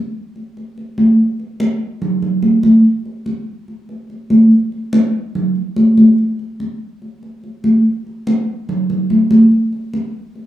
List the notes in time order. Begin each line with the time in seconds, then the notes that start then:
0.36 high conga
0.57 high conga
0.78 high conga
0.98 high conga
1.19 high conga
1.40 high conga
1.60 high conga
2.02 high conga, low conga
2.22 high conga, low conga
2.42 high conga
2.63 high conga
2.85 high conga
3.05 high conga
3.26 high conga
3.68 high conga
3.89 high conga
4.10 high conga
4.30 high conga
4.51 high conga
4.72 high conga
4.93 high conga
5.35 high conga, low conga
5.56 high conga
5.76 high conga
5.97 high conga
6.18 high conga
6.39 high conga
6.60 high conga
7.02 high conga
7.23 high conga
7.44 high conga
7.64 high conga
7.85 high conga
8.06 high conga
8.27 high conga
8.69 high conga, low conga
8.90 high conga, low conga
9.10 high conga
9.31 high conga
9.52 high conga
9.73 high conga
9.94 high conga
10.35 high conga